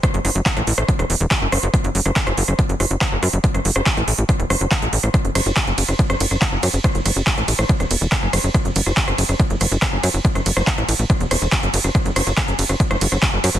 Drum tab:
RD |----------------|----------------|----------------|--x---x---x---x-|
HH |xxoxxxoxxxoxx-ox|xxoxxxoxxxoxx-ox|xxoxxxoxxxoxxxox|xxoxxxoxxxoxx-ox|
CP |----x-------x---|----x-------x---|----x-------x---|----x-------x---|
SD |r-r--r-r-r--r-r-|r--r-r-r--r-r-r-|-r-r-r--r-r-r--r|r-r-r--r-r-r--r-|
BD |o---o---o---o---|o---o---o---o---|o---o---o---o---|o---o---o---o---|

RD |--x---x---x---x-|--x---x---x---x-|--x---x---x---x-|--x---x---x---x-|
HH |xxoxxxoxxxoxx-ox|xxoxxxoxxxoxx-ox|xxoxxxoxxxoxxxox|xxoxxxoxxxoxx-ox|
CP |----x-------x---|----x-------x---|----x-------x---|----x-------x---|
SD |r-r--r-r-r--r-r-|r--r-r-r--r-r-r-|-r-r-r--r-r-r--r|r-r-r--r-r-r--r-|
BD |o---o---o---o---|o---o---o---o---|o---o---o---o---|o---o---o---o---|